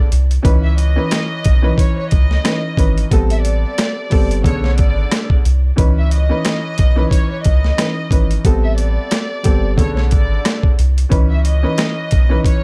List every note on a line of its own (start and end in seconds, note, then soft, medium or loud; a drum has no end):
0.12 0.38 C2 loud
0.12 closed hi-hat medium
0.31 closed hi-hat medium
0.42 0.98 C#2 loud
0.42 0.91 E3 loud
0.42 0.91 C#4 medium
0.42 0.92 D#4 medium
0.42 0.92 B4 loud
0.42 kick loud
0.42 closed hi-hat medium
0.63 0.76 E5 medium
0.78 1.75 D#5 medium
0.78 closed hi-hat medium
0.96 1.57 E3 medium
0.96 1.57 C#4 medium
0.96 1.58 D#4 medium
0.96 1.58 B4 loud
1.11 cross-stick loud
1.11 snare loud
1.11 closed hi-hat loud
1.44 1.72 B1 loud
1.44 kick loud
1.44 closed hi-hat medium
1.62 2.38 E3 loud
1.62 2.39 C#4 medium
1.62 2.39 D#4 medium
1.62 2.39 B4 loud
1.78 1.96 C#5 medium
1.78 kick medium
1.78 closed hi-hat medium
1.98 2.11 C#5 medium
2.11 2.39 C#2 loud
2.11 3.07 D#5 medium
2.11 kick medium
2.11 closed hi-hat medium
2.31 snare soft
2.43 2.75 E3 medium
2.43 2.75 C#4 medium
2.43 2.76 D#4 medium
2.43 2.76 B4 medium
2.43 cross-stick loud
2.43 snare loud
2.43 closed hi-hat loud
2.77 3.04 G#1 loud
2.77 3.09 E3 medium
2.77 3.09 C#4 medium
2.77 3.09 D#4 medium
2.77 3.10 B4 medium
2.77 kick medium
2.77 closed hi-hat medium
2.98 closed hi-hat medium
3.11 3.65 A1 loud
3.11 4.04 G3 medium
3.11 4.04 B3 medium
3.11 4.05 C4 medium
3.11 4.05 A4 loud
3.11 kick loud
3.11 closed hi-hat loud
3.30 3.44 E5 medium
3.30 closed hi-hat medium
3.43 4.40 D5 medium
3.43 closed hi-hat medium
3.78 cross-stick loud
3.78 snare loud
3.78 closed hi-hat loud
4.10 4.46 G1 loud
4.10 4.44 G3 loud
4.10 4.43 B3 medium
4.10 4.45 C4 medium
4.10 4.44 A4 loud
4.10 kick loud
4.10 open hi-hat medium
4.31 closed hi-hat medium
4.44 4.81 B1 loud
4.44 5.38 C#3 medium
4.44 5.37 D3 medium
4.44 5.38 B3 medium
4.44 5.38 A4 loud
4.44 4.61 C#5 medium
4.44 kick medium
4.44 closed hi-hat medium
4.64 4.78 C#5 medium
4.64 snare soft
4.78 5.05 G#1 loud
4.78 5.27 D5 medium
4.78 kick medium
4.78 closed hi-hat medium
5.11 cross-stick medium
5.11 snare loud
5.11 closed hi-hat loud
5.30 kick loud
5.45 5.72 C2 loud
5.45 closed hi-hat medium
5.76 6.31 C#2 loud
5.76 6.24 E3 medium
5.76 6.25 C#4 medium
5.76 6.25 D#4 medium
5.76 6.25 B4 loud
5.76 kick loud
5.76 closed hi-hat loud
5.98 6.11 E5 medium
6.11 7.09 D#5 medium
6.11 closed hi-hat medium
6.29 6.90 E3 medium
6.29 6.91 C#4 medium
6.29 6.91 D#4 medium
6.29 6.91 B4 loud
6.45 cross-stick loud
6.45 snare loud
6.45 closed hi-hat loud
6.78 7.05 B1 medium
6.78 kick loud
6.78 closed hi-hat medium
6.96 7.72 E3 loud
6.96 7.72 C#4 medium
6.96 7.72 D#4 medium
6.96 7.73 B4 loud
7.11 7.28 C#5 medium
7.11 kick medium
7.11 closed hi-hat medium
7.30 7.44 C#5 medium
7.44 7.72 C#2 medium
7.44 8.41 D#5 medium
7.44 kick medium
7.44 closed hi-hat medium
7.65 snare soft
7.77 8.08 E3 medium
7.77 8.09 C#4 medium
7.77 8.09 D#4 medium
7.77 8.09 B4 medium
7.77 cross-stick loud
7.77 snare loud
7.77 closed hi-hat loud
8.11 8.38 G#1 loud
8.11 8.42 E3 medium
8.11 8.42 C#4 medium
8.11 8.43 D#4 medium
8.11 8.43 B4 medium
8.11 kick medium
8.11 closed hi-hat medium
8.31 closed hi-hat medium
8.44 8.98 A1 loud
8.44 9.38 G3 medium
8.44 9.38 B3 medium
8.44 9.38 C4 medium
8.44 9.38 A4 loud
8.44 kick loud
8.44 closed hi-hat loud
8.63 8.77 E5 medium
8.77 9.74 D5 medium
8.77 closed hi-hat medium
9.11 cross-stick loud
9.11 snare loud
9.11 closed hi-hat loud
9.43 9.80 G1 loud
9.43 9.77 G3 loud
9.43 9.76 B3 medium
9.43 9.78 C4 medium
9.43 9.78 A4 loud
9.43 kick loud
9.43 closed hi-hat medium
9.77 10.14 B1 loud
9.77 10.71 C#3 medium
9.77 10.71 D3 medium
9.77 10.71 B3 medium
9.77 10.72 A4 loud
9.77 9.94 C#5 medium
9.77 kick medium
9.77 closed hi-hat medium
9.95 10.09 C#5 medium
9.95 snare soft
10.11 10.39 G#1 medium
10.11 10.61 D5 medium
10.11 kick medium
10.11 closed hi-hat medium
10.45 cross-stick loud
10.45 snare loud
10.45 closed hi-hat loud
10.63 kick loud
10.79 11.05 C2 loud
10.79 closed hi-hat medium
10.98 closed hi-hat medium
11.09 11.65 C#2 loud
11.09 11.58 E3 medium
11.09 11.58 C#4 medium
11.09 11.58 D#4 medium
11.09 11.59 B4 loud
11.09 kick loud
11.09 closed hi-hat loud
11.30 11.43 E5 medium
11.45 12.42 D#5 medium
11.45 closed hi-hat medium
11.63 12.24 E3 medium
11.63 12.24 C#4 loud
11.63 12.24 D#4 medium
11.63 12.25 B4 loud
11.78 cross-stick loud
11.78 snare loud
11.78 closed hi-hat loud
12.11 12.39 B1 medium
12.11 kick loud
12.11 closed hi-hat medium
12.29 12.64 E3 loud
12.29 12.64 C#4 medium
12.29 12.64 D#4 medium
12.29 12.64 B4 loud
12.45 12.62 C#5 medium
12.45 kick medium
12.45 closed hi-hat medium